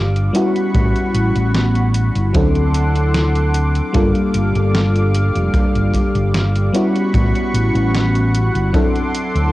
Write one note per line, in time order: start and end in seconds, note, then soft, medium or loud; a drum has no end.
0.00 0.29 G1 medium
0.00 0.26 G3 medium
0.00 2.30 G3 medium
0.00 0.26 A#3 medium
0.00 0.27 D4 medium
0.00 0.27 F4 medium
0.00 0.27 A4 medium
0.00 0.32 F5 medium
0.00 0.32 D6 medium
0.16 closed hi-hat soft
0.33 2.26 G3 medium
0.33 2.27 B3 medium
0.33 2.27 C#4 medium
0.33 2.27 E4 medium
0.33 2.28 F#4 loud
0.33 2.33 F#5 medium
0.33 2.33 B5 medium
0.33 2.33 C#6 medium
0.33 closed hi-hat medium
0.56 closed hi-hat soft
0.75 0.91 A1 medium
0.75 kick loud
0.75 closed hi-hat medium
0.96 closed hi-hat soft
1.14 1.31 A1 medium
1.14 closed hi-hat medium
1.36 2.09 A1 loud
1.36 closed hi-hat soft
1.55 snare loud
1.55 closed hi-hat medium
1.75 closed hi-hat soft
1.94 closed hi-hat medium
2.16 2.31 G1 loud
2.16 closed hi-hat soft
2.33 3.80 D2 medium
2.33 3.86 F#3 medium
2.33 3.87 C4 medium
2.33 3.87 D4 medium
2.33 3.87 E4 medium
2.33 3.93 A4 medium
2.33 3.88 A4 medium
2.33 3.93 F#5 medium
2.33 3.93 C6 medium
2.33 6.71 D6 medium
2.33 kick loud
2.33 closed hi-hat medium
2.55 closed hi-hat soft
2.74 closed hi-hat medium
2.96 closed hi-hat soft
3.14 snare loud
3.14 closed hi-hat medium
3.35 closed hi-hat soft
3.54 closed hi-hat medium
3.75 closed hi-hat soft
3.93 4.11 G1 medium
3.93 6.66 G3 medium
3.93 8.70 G3 medium
3.93 6.66 A#3 medium
3.93 6.67 D4 medium
3.93 6.67 F4 medium
3.93 6.68 A4 medium
3.93 6.72 F5 medium
3.93 kick loud
3.93 closed hi-hat medium
4.15 closed hi-hat soft
4.34 4.51 G1 medium
4.34 closed hi-hat medium
4.55 5.29 G1 loud
4.55 closed hi-hat soft
4.75 snare loud
4.75 closed hi-hat medium
4.95 closed hi-hat soft
5.14 closed hi-hat medium
5.35 5.51 F1 loud
5.35 closed hi-hat soft
5.54 muted fingered electric bass stroke soft
5.54 kick loud
5.54 closed hi-hat medium
5.75 5.91 G1 medium
5.75 closed hi-hat soft
5.94 kick medium
5.94 closed hi-hat medium
6.15 6.68 G1 medium
6.15 closed hi-hat soft
6.34 snare loud
6.34 closed hi-hat medium
6.55 closed hi-hat soft
6.73 8.66 G3 medium
6.73 8.66 B3 medium
6.73 8.67 C#4 medium
6.73 8.67 E4 medium
6.73 8.68 F#4 loud
6.73 9.52 F#5 medium
6.73 8.72 B5 medium
6.73 8.72 C#6 medium
6.73 closed hi-hat medium
6.95 closed hi-hat soft
7.14 7.31 A1 medium
7.14 kick loud
7.14 closed hi-hat medium
7.35 closed hi-hat soft
7.54 7.71 A1 medium
7.54 closed hi-hat medium
7.75 8.48 A1 loud
7.75 closed hi-hat soft
7.95 snare loud
7.95 closed hi-hat medium
8.15 closed hi-hat soft
8.35 closed hi-hat medium
8.55 8.70 G1 loud
8.55 closed hi-hat soft
8.73 9.52 F#3 medium
8.73 9.52 C4 medium
8.73 9.52 D4 medium
8.73 9.52 E4 medium
8.73 9.52 A4 medium
8.73 9.52 C6 medium
8.73 9.52 D6 medium
8.73 kick loud
8.73 closed hi-hat medium
8.95 closed hi-hat soft
9.15 closed hi-hat medium
9.35 9.52 D2 medium
9.35 closed hi-hat soft